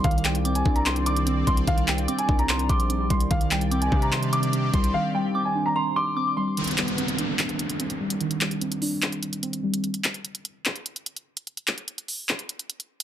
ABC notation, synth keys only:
X:1
M:4/4
L:1/8
Q:1/4=147
K:Cm
V:1 name="Synth keys"
E, G, C D3 C G, | E, G, C D3 C G, | E, G, C D3 C G, | E, G, C D3 C G, |
E, G, C D3 C G, | E, G, C D3 C G, | z8 | z8 |]